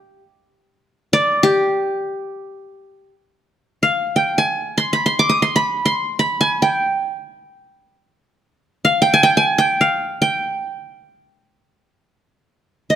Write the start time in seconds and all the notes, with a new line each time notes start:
Already playing: G4
1.13 D5
1.43 G4
3.83 F5
4.16 G5
4.38 G#5
4.78 C6
4.93 B5
5.06 C6
5.19 D6
5.29 D#6
5.42 C6
5.56 B5
5.86 C6
6.19 B5
6.41 G#5
6.62 G5
8.85 F5
9.02 G5
9.14 G#5
9.23 G5
9.37 G#5
9.58 G5
9.81 F5
10.22 G5
12.90 D#5